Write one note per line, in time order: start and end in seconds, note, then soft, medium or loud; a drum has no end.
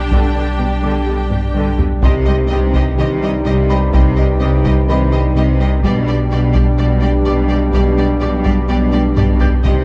0.00 2.02 B1 medium
0.00 1.99 G3 medium
0.00 1.82 D4 medium
0.00 2.03 D4 medium
0.00 1.79 G4 medium
0.00 1.99 G4 medium
0.00 2.02 D5 medium
0.00 1.79 G5 medium
0.11 0.20 B2 medium
0.11 0.34 D3 soft
0.11 0.26 G3 medium
0.11 taiko medium
0.35 0.44 B2 soft
0.35 0.43 D3 soft
0.35 0.50 D4 soft
0.59 0.68 B2 soft
0.59 0.67 G3 soft
0.59 0.74 B3 medium
0.83 0.91 B2 soft
0.83 1.06 D3 soft
0.83 0.97 G3 medium
0.83 1.98 D5 soft
0.83 1.98 D6 soft
1.07 1.16 B2 soft
1.07 1.15 D3 soft
1.07 1.21 G4 soft
1.30 1.40 B2 soft
1.30 1.39 G3 soft
1.30 1.45 B3 medium
1.30 taiko low-mid medium
1.54 1.64 B2 soft
1.54 1.77 D3 soft
1.54 1.69 G3 medium
1.54 taiko low-mid medium
1.79 1.87 B2 soft
1.79 1.88 D3 soft
1.79 1.93 G4 medium
1.79 taiko low medium
2.02 5.84 C2 medium
2.02 2.45 C2 medium
2.02 5.79 G2 medium
2.02 2.17 C3 medium
2.02 2.45 C3 medium
2.02 5.79 G3 medium
2.02 5.80 G3 medium
2.02 2.12 G3 medium
2.02 5.80 G3 medium
2.02 5.79 D#4 medium
2.02 5.80 D#4 medium
2.02 5.80 G4 medium
2.02 2.12 G4 medium
2.02 2.12 D#5 medium
2.02 5.80 G5 medium
2.02 3.42 C6 soft
2.02 taiko medium
2.26 2.36 G3 medium
2.26 2.35 G4 soft
2.26 2.34 D#5 medium
2.49 2.92 C2 medium
2.49 2.92 C3 medium
2.49 2.59 G3 medium
2.49 2.65 C4 medium
2.49 2.60 G4 medium
2.49 2.57 D#5 medium
2.73 2.88 C3 medium
2.73 2.83 G3 soft
2.73 2.83 G4 medium
2.73 2.82 D#5 soft
2.73 taiko medium
2.98 3.40 C2 medium
2.98 3.40 C3 medium
2.98 3.12 D#3 medium
2.98 3.06 G3 medium
2.98 3.06 G4 medium
2.98 3.07 D#5 medium
3.21 3.29 G3 soft
3.21 3.37 G3 medium
3.21 3.31 G4 medium
3.21 3.30 D#5 medium
3.45 3.88 C2 medium
3.45 3.87 C3 medium
3.45 3.60 C3 medium
3.45 3.54 G3 soft
3.45 3.55 G4 soft
3.45 3.53 D#5 medium
3.69 3.77 G3 soft
3.69 3.79 G4 soft
3.69 3.77 D#5 medium
3.69 4.88 B5 medium
3.93 4.35 C2 medium
3.93 4.08 C3 medium
3.93 4.35 C3 medium
3.93 4.01 G3 medium
3.93 4.02 G4 medium
3.93 4.01 D#5 medium
3.93 taiko medium
4.16 4.25 G3 soft
4.16 4.26 G4 soft
4.16 4.24 D#5 soft
4.40 4.83 C2 medium
4.40 4.82 C3 medium
4.40 4.48 G3 medium
4.40 4.55 C4 medium
4.40 4.50 G4 soft
4.40 4.48 D#5 soft
4.40 5.80 D#6 soft
4.64 4.78 C3 medium
4.64 4.73 G3 soft
4.64 4.74 G4 medium
4.64 4.73 D#5 soft
4.64 taiko medium
4.88 5.30 C2 medium
4.88 5.30 C3 medium
4.88 5.02 D#3 medium
4.88 4.96 G3 medium
4.88 4.99 G4 medium
4.88 6.28 B4 soft
4.88 4.97 D#5 medium
4.88 6.28 B5 medium
5.12 5.26 G3 medium
5.12 5.20 G3 soft
5.12 5.22 G4 soft
5.12 5.21 D#5 medium
5.35 5.78 C2 medium
5.35 5.50 C3 medium
5.35 5.78 C3 medium
5.35 5.44 G3 medium
5.35 5.45 G4 medium
5.35 5.44 D#5 medium
5.59 5.67 G3 soft
5.59 5.69 G4 medium
5.59 5.69 D#5 soft
5.82 9.66 B1 medium
5.82 6.25 B1 medium
5.82 9.48 G2 medium
5.82 6.26 B2 medium
5.82 5.90 G3 medium
5.82 5.97 G3 medium
5.82 9.48 G3 medium
5.82 9.60 G3 medium
5.82 9.48 G3 medium
5.82 9.64 D4 medium
5.82 9.48 D4 medium
5.82 9.60 G4 medium
5.82 5.92 G4 medium
5.82 5.92 D5 medium
5.82 9.61 G5 medium
5.82 taiko medium
6.07 6.15 G3 soft
6.07 6.16 G4 medium
6.07 6.15 D5 soft
6.30 6.73 B1 medium
6.30 6.73 B2 medium
6.30 6.38 G3 medium
6.30 6.40 G4 medium
6.30 6.46 G4 medium
6.30 6.39 D5 medium
6.53 6.69 G3 medium
6.53 6.64 G3 soft
6.53 6.64 G4 medium
6.53 6.61 D5 soft
6.53 taiko medium
6.78 7.21 B1 medium
6.78 7.21 B2 medium
6.78 6.86 G3 medium
6.78 6.93 B3 medium
6.78 6.86 G4 medium
6.78 6.86 D5 medium
7.01 7.11 G3 medium
7.01 7.16 D4 medium
7.01 7.11 G4 soft
7.01 7.09 D5 medium
7.25 7.68 B1 medium
7.25 7.68 B2 medium
7.25 7.41 G3 medium
7.25 7.34 G3 medium
7.25 7.34 G4 medium
7.25 7.33 D5 medium
7.49 7.58 G3 medium
7.49 7.58 G4 soft
7.49 7.57 D5 medium
7.73 8.16 B1 medium
7.73 8.16 B2 medium
7.73 7.88 G3 medium
7.73 7.82 G3 medium
7.73 7.82 G4 medium
7.73 7.81 D5 medium
7.73 taiko medium
7.97 8.06 G3 medium
7.97 8.06 G4 medium
7.97 8.05 D5 medium
8.20 8.64 B1 medium
8.20 8.63 B2 medium
8.20 8.29 G3 medium
8.20 8.29 G4 medium
8.20 8.36 G4 medium
8.20 8.28 D5 medium
8.20 9.60 D6 medium
8.44 8.53 G3 medium
8.44 8.60 G3 medium
8.44 8.53 G4 medium
8.44 8.52 D5 medium
8.44 taiko medium
8.69 9.12 B1 medium
8.69 9.11 B2 medium
8.69 8.77 G3 medium
8.69 8.83 B3 medium
8.69 8.77 G4 medium
8.69 8.77 D5 medium
8.91 9.01 G3 medium
8.91 9.07 D4 medium
8.91 9.02 G4 soft
8.91 8.99 D5 medium
8.91 taiko high medium
9.16 9.59 B1 medium
9.16 9.59 B2 medium
9.16 9.25 G3 medium
9.16 9.31 G3 medium
9.16 9.26 G4 medium
9.16 9.24 D5 medium
9.16 taiko low-mid medium
9.39 9.49 G3 soft
9.39 9.49 G4 soft
9.39 9.47 D5 medium
9.39 9.84 G6 medium
9.39 taiko low medium
9.63 9.84 C2 medium
9.63 9.84 G2 medium
9.63 9.78 C3 medium
9.63 9.84 C3 medium
9.63 9.72 G3 medium
9.63 9.84 G3 medium
9.63 9.84 D#4 medium
9.63 9.72 G4 medium
9.63 9.84 G4 medium
9.63 9.71 D#5 medium
9.63 9.84 G5 medium
9.63 taiko medium